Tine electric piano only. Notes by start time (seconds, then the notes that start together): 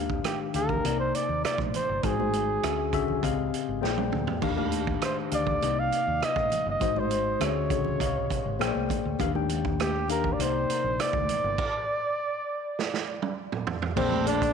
Already playing: D#3 D4 G4 F5
0.54 D#3 D4 G4 F5
0.84 C3 A#3 D#4 D5
2.03 G#3 D#4 F#4 C5
2.18 G#3 D#4 F#4 C5
2.63 D3 C#4 F#4 G#4 E5
2.93 D3 C#4 F#4 G#4 E5
3.22 C#3 C4 G4 D#5 F5
3.81 A#3 G#4 C5 D5 G5
4.41 D#3 D4 G4 F5
4.56 D#3 D4 G4 F5
5.31 D#3 D4 G4 F5
5.61 C3 A#3 D#4 D#5
6.80 G#3 D#4 F#4 C5
6.95 G#3 D#4 F#4 C5
7.40 D3 C#4 F#4 G#4 E5
7.70 D3 C#4 F#4 G#4 C#5
8.00 C3 C#3 G4 D#5 F5
8.59 A#3 G#4 C5 C#5 G5
8.68 D5
9.19 D#3 D4 G4 F5
9.34 D#3 D4 G4 G5
10.09 D#3 D4 G4 F5
10.38 C3 A#3 D#4 D5
13.96 A#3 G#4 C5 D5
14.26 A#3 G#4 C5 D5